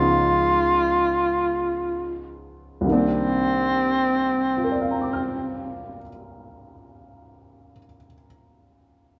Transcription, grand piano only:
0, 0, Header, 1, 2, 480
1, 0, Start_track
1, 0, Key_signature, -3, "minor"
1, 0, Tempo, 1500000
1, 384, Tempo, 1639344
1, 864, Tempo, 1699717
1, 865, Time_signature, 4, 2, 24, 8
1, 2657, End_track
2, 0, Start_track
2, 0, Title_t, "Grand piano"
2, 0, Program_c, 0, 0
2, 0, Control_c, 0, 64, 127
2, 0, Note_on_c, 0, 37, 51
2, 0, Note_on_c, 0, 49, 48
2, 0, Note_on_c, 0, 53, 44
2, 0, Note_on_c, 0, 59, 44
2, 0, Note_on_c, 0, 63, 52
2, 856, Note_on_c, 0, 36, 45
2, 861, Note_off_c, 0, 37, 0
2, 864, Note_on_c, 0, 48, 43
2, 865, Note_off_c, 0, 49, 0
2, 868, Note_off_c, 0, 53, 0
2, 869, Control_c, 0, 64, 0
2, 870, Note_on_c, 0, 51, 43
2, 873, Note_off_c, 0, 59, 0
2, 876, Note_off_c, 0, 63, 0
2, 879, Note_on_c, 0, 58, 42
2, 887, Note_on_c, 0, 62, 50
2, 922, Control_c, 0, 64, 127
2, 1353, Note_on_c, 0, 65, 34
2, 1372, Note_on_c, 0, 70, 34
2, 1395, Note_on_c, 0, 74, 33
2, 1421, Note_on_c, 0, 77, 32
2, 1449, Note_on_c, 0, 82, 29
2, 1479, Note_on_c, 0, 86, 28
2, 1511, Note_on_c, 0, 89, 27
2, 1751, Note_off_c, 0, 36, 0
2, 1759, Note_off_c, 0, 48, 0
2, 1765, Note_off_c, 0, 51, 0
2, 1774, Note_off_c, 0, 58, 0
2, 1782, Note_off_c, 0, 62, 0
2, 2236, Note_off_c, 0, 65, 0
2, 2256, Note_off_c, 0, 70, 0
2, 2278, Note_off_c, 0, 74, 0
2, 2305, Note_off_c, 0, 77, 0
2, 2333, Note_off_c, 0, 82, 0
2, 2362, Note_off_c, 0, 86, 0
2, 2395, Note_off_c, 0, 89, 0
2, 2657, End_track
0, 0, End_of_file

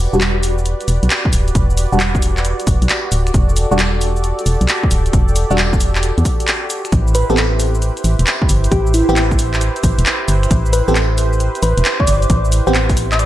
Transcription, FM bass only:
0, 0, Header, 1, 2, 480
1, 0, Start_track
1, 0, Key_signature, 1, "minor"
1, 0, Tempo, 447761
1, 1663, Time_signature, 4, 2, 24, 8
1, 14210, End_track
2, 0, Start_track
2, 0, Title_t, "FM bass"
2, 0, Program_c, 0, 39
2, 143, Note_on_c, 0, 28, 79
2, 800, Note_off_c, 0, 28, 0
2, 943, Note_on_c, 0, 28, 80
2, 1064, Note_off_c, 0, 28, 0
2, 1103, Note_on_c, 0, 35, 97
2, 1163, Note_off_c, 0, 35, 0
2, 1423, Note_on_c, 0, 26, 85
2, 1623, Note_off_c, 0, 26, 0
2, 1663, Note_on_c, 0, 28, 99
2, 2000, Note_off_c, 0, 28, 0
2, 2064, Note_on_c, 0, 28, 78
2, 2720, Note_off_c, 0, 28, 0
2, 2862, Note_on_c, 0, 28, 83
2, 2983, Note_off_c, 0, 28, 0
2, 3023, Note_on_c, 0, 35, 95
2, 3083, Note_off_c, 0, 35, 0
2, 3343, Note_on_c, 0, 26, 84
2, 3544, Note_off_c, 0, 26, 0
2, 3582, Note_on_c, 0, 28, 98
2, 3920, Note_off_c, 0, 28, 0
2, 3982, Note_on_c, 0, 28, 79
2, 4640, Note_off_c, 0, 28, 0
2, 4782, Note_on_c, 0, 28, 80
2, 4903, Note_off_c, 0, 28, 0
2, 4943, Note_on_c, 0, 35, 97
2, 5003, Note_off_c, 0, 35, 0
2, 5262, Note_on_c, 0, 26, 90
2, 5463, Note_off_c, 0, 26, 0
2, 5503, Note_on_c, 0, 28, 100
2, 5840, Note_off_c, 0, 28, 0
2, 5904, Note_on_c, 0, 28, 80
2, 6560, Note_off_c, 0, 28, 0
2, 6623, Note_on_c, 0, 40, 104
2, 6683, Note_off_c, 0, 40, 0
2, 7422, Note_on_c, 0, 33, 101
2, 7759, Note_off_c, 0, 33, 0
2, 7824, Note_on_c, 0, 33, 80
2, 8480, Note_off_c, 0, 33, 0
2, 8622, Note_on_c, 0, 33, 78
2, 8743, Note_off_c, 0, 33, 0
2, 8783, Note_on_c, 0, 28, 92
2, 8843, Note_off_c, 0, 28, 0
2, 9103, Note_on_c, 0, 31, 88
2, 9304, Note_off_c, 0, 31, 0
2, 9343, Note_on_c, 0, 33, 100
2, 9680, Note_off_c, 0, 33, 0
2, 9744, Note_on_c, 0, 33, 83
2, 10400, Note_off_c, 0, 33, 0
2, 10543, Note_on_c, 0, 33, 79
2, 10664, Note_off_c, 0, 33, 0
2, 10704, Note_on_c, 0, 28, 98
2, 10763, Note_off_c, 0, 28, 0
2, 11023, Note_on_c, 0, 31, 86
2, 11224, Note_off_c, 0, 31, 0
2, 11263, Note_on_c, 0, 33, 97
2, 11600, Note_off_c, 0, 33, 0
2, 11664, Note_on_c, 0, 33, 81
2, 12320, Note_off_c, 0, 33, 0
2, 12463, Note_on_c, 0, 33, 82
2, 12584, Note_off_c, 0, 33, 0
2, 12623, Note_on_c, 0, 28, 100
2, 12683, Note_off_c, 0, 28, 0
2, 12943, Note_on_c, 0, 31, 87
2, 13143, Note_off_c, 0, 31, 0
2, 13183, Note_on_c, 0, 33, 104
2, 13520, Note_off_c, 0, 33, 0
2, 13584, Note_on_c, 0, 33, 81
2, 14210, Note_off_c, 0, 33, 0
2, 14210, End_track
0, 0, End_of_file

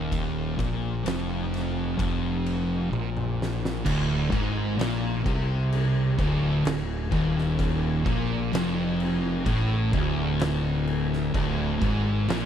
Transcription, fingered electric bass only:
0, 0, Header, 1, 2, 480
1, 0, Start_track
1, 0, Tempo, 936037
1, 61, Time_signature, 4, 2, 24, 8
1, 6387, End_track
2, 0, Start_track
2, 0, Title_t, "Fingered electric bass"
2, 0, Program_c, 0, 33
2, 0, Note_on_c, 0, 27, 93
2, 279, Note_off_c, 0, 27, 0
2, 303, Note_on_c, 0, 34, 95
2, 524, Note_off_c, 0, 34, 0
2, 535, Note_on_c, 0, 29, 94
2, 995, Note_off_c, 0, 29, 0
2, 1023, Note_on_c, 0, 29, 86
2, 1479, Note_off_c, 0, 29, 0
2, 1495, Note_on_c, 0, 34, 96
2, 1954, Note_off_c, 0, 34, 0
2, 1977, Note_on_c, 0, 26, 93
2, 2199, Note_off_c, 0, 26, 0
2, 2219, Note_on_c, 0, 32, 102
2, 2440, Note_off_c, 0, 32, 0
2, 2456, Note_on_c, 0, 34, 104
2, 2678, Note_off_c, 0, 34, 0
2, 2699, Note_on_c, 0, 36, 100
2, 3156, Note_off_c, 0, 36, 0
2, 3174, Note_on_c, 0, 26, 101
2, 3397, Note_off_c, 0, 26, 0
2, 3414, Note_on_c, 0, 26, 86
2, 3637, Note_off_c, 0, 26, 0
2, 3654, Note_on_c, 0, 27, 105
2, 4114, Note_off_c, 0, 27, 0
2, 4133, Note_on_c, 0, 34, 105
2, 4357, Note_off_c, 0, 34, 0
2, 4369, Note_on_c, 0, 29, 111
2, 4833, Note_off_c, 0, 29, 0
2, 4852, Note_on_c, 0, 33, 95
2, 5078, Note_off_c, 0, 33, 0
2, 5094, Note_on_c, 0, 26, 105
2, 5798, Note_off_c, 0, 26, 0
2, 5816, Note_on_c, 0, 26, 98
2, 6042, Note_off_c, 0, 26, 0
2, 6058, Note_on_c, 0, 32, 108
2, 6284, Note_off_c, 0, 32, 0
2, 6301, Note_on_c, 0, 34, 104
2, 6387, Note_off_c, 0, 34, 0
2, 6387, End_track
0, 0, End_of_file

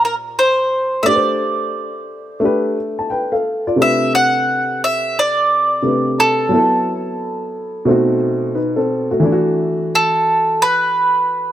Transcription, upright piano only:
0, 0, Header, 1, 2, 480
1, 0, Start_track
1, 0, Tempo, 681818
1, 743, Time_signature, 4, 2, 24, 8
1, 8110, End_track
2, 0, Start_track
2, 0, Title_t, "Upright piano"
2, 0, Program_c, 0, 0
2, 0, Note_on_c, 0, 46, 67
2, 0, Note_on_c, 0, 58, 62
2, 0, Note_on_c, 0, 62, 59
2, 0, Note_on_c, 0, 67, 63
2, 0, Note_on_c, 0, 72, 71
2, 708, Note_off_c, 0, 46, 0
2, 713, Note_off_c, 0, 58, 0
2, 718, Note_off_c, 0, 62, 0
2, 724, Note_off_c, 0, 67, 0
2, 726, Note_on_c, 0, 57, 66
2, 729, Note_off_c, 0, 72, 0
2, 740, Note_on_c, 0, 62, 57
2, 755, Note_on_c, 0, 67, 61
2, 768, Note_on_c, 0, 71, 62
2, 813, Note_on_c, 0, 72, 75
2, 814, Note_off_c, 0, 71, 0
2, 1675, Note_off_c, 0, 57, 0
2, 1683, Note_off_c, 0, 62, 0
2, 1689, Note_on_c, 0, 57, 72
2, 1690, Note_off_c, 0, 67, 0
2, 1700, Note_on_c, 0, 62, 63
2, 1717, Note_on_c, 0, 67, 62
2, 1720, Note_off_c, 0, 72, 0
2, 1727, Note_on_c, 0, 71, 79
2, 1946, Note_off_c, 0, 67, 0
2, 1951, Note_off_c, 0, 71, 0
2, 2103, Note_on_c, 0, 81, 57
2, 2182, Note_on_c, 0, 79, 66
2, 2183, Note_off_c, 0, 81, 0
2, 2191, Note_on_c, 0, 71, 57
2, 2328, Note_off_c, 0, 79, 0
2, 2333, Note_off_c, 0, 71, 0
2, 2337, Note_on_c, 0, 77, 58
2, 2341, Note_on_c, 0, 69, 54
2, 2565, Note_off_c, 0, 77, 0
2, 2567, Note_off_c, 0, 69, 0
2, 2585, Note_on_c, 0, 74, 63
2, 2586, Note_on_c, 0, 65, 52
2, 2637, Note_off_c, 0, 57, 0
2, 2642, Note_off_c, 0, 62, 0
2, 2647, Note_on_c, 0, 48, 59
2, 2655, Note_on_c, 0, 57, 58
2, 2667, Note_on_c, 0, 62, 60
2, 2676, Note_on_c, 0, 67, 57
2, 2686, Note_on_c, 0, 71, 70
2, 2809, Note_off_c, 0, 65, 0
2, 2809, Note_off_c, 0, 74, 0
2, 4067, Note_off_c, 0, 48, 0
2, 4071, Note_off_c, 0, 57, 0
2, 4077, Note_off_c, 0, 62, 0
2, 4082, Note_off_c, 0, 67, 0
2, 4087, Note_off_c, 0, 71, 0
2, 4099, Note_on_c, 0, 48, 49
2, 4105, Note_on_c, 0, 57, 43
2, 4110, Note_on_c, 0, 62, 44
2, 4113, Note_on_c, 0, 67, 45
2, 4122, Note_on_c, 0, 71, 52
2, 4568, Note_on_c, 0, 54, 62
2, 4581, Note_off_c, 0, 48, 0
2, 4581, Note_on_c, 0, 59, 59
2, 4585, Note_off_c, 0, 57, 0
2, 4587, Note_off_c, 0, 62, 0
2, 4589, Note_off_c, 0, 67, 0
2, 4593, Note_off_c, 0, 71, 0
2, 4596, Note_on_c, 0, 64, 61
2, 4611, Note_on_c, 0, 69, 73
2, 5517, Note_off_c, 0, 54, 0
2, 5523, Note_off_c, 0, 59, 0
2, 5528, Note_on_c, 0, 47, 77
2, 5531, Note_off_c, 0, 64, 0
2, 5538, Note_on_c, 0, 57, 71
2, 5539, Note_off_c, 0, 69, 0
2, 5546, Note_on_c, 0, 60, 66
2, 5556, Note_on_c, 0, 63, 66
2, 5568, Note_on_c, 0, 66, 80
2, 6011, Note_off_c, 0, 57, 0
2, 6012, Note_off_c, 0, 63, 0
2, 6015, Note_off_c, 0, 60, 0
2, 6019, Note_on_c, 0, 71, 60
2, 6022, Note_on_c, 0, 63, 52
2, 6026, Note_off_c, 0, 66, 0
2, 6166, Note_off_c, 0, 71, 0
2, 6168, Note_off_c, 0, 63, 0
2, 6169, Note_on_c, 0, 69, 68
2, 6172, Note_on_c, 0, 60, 55
2, 6401, Note_off_c, 0, 69, 0
2, 6402, Note_off_c, 0, 60, 0
2, 6415, Note_on_c, 0, 66, 65
2, 6422, Note_on_c, 0, 57, 52
2, 6475, Note_on_c, 0, 52, 83
2, 6476, Note_off_c, 0, 47, 0
2, 6479, Note_off_c, 0, 57, 0
2, 6489, Note_on_c, 0, 57, 69
2, 6502, Note_on_c, 0, 62, 74
2, 6516, Note_on_c, 0, 64, 73
2, 6553, Note_off_c, 0, 66, 0
2, 6564, Note_on_c, 0, 66, 88
2, 6568, Note_off_c, 0, 64, 0
2, 8110, Note_off_c, 0, 52, 0
2, 8110, Note_off_c, 0, 57, 0
2, 8110, Note_off_c, 0, 62, 0
2, 8110, Note_off_c, 0, 66, 0
2, 8110, End_track
0, 0, End_of_file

